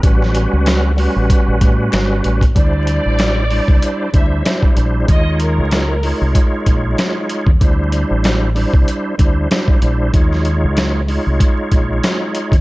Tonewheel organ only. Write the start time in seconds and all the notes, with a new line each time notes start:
0.03 G3 C#4 F#4 B4
0.97 G3 C#4 F#4 B4
2.55 G3 D4 E4 C5
3.50 G3 D4 E4 C5
4.13 G3 D4 E4 C5
4.44 G3 D4 E4 C5
4.75 G3 D4 E4 C5
5.06 G#3 D#4 F4 C#5
6.02 G#3 D#4 F4 C#5
7.60 G3 D4 E4 C5
8.55 G3 D4 E4 C5
9.18 G3 D4 E4 C5
9.50 G3 D4 E4 C5
9.81 G3 D4 E4 C5
10.12 G#3 D#4 F4 C#5
11.08 G#3 D#4 F4 C#5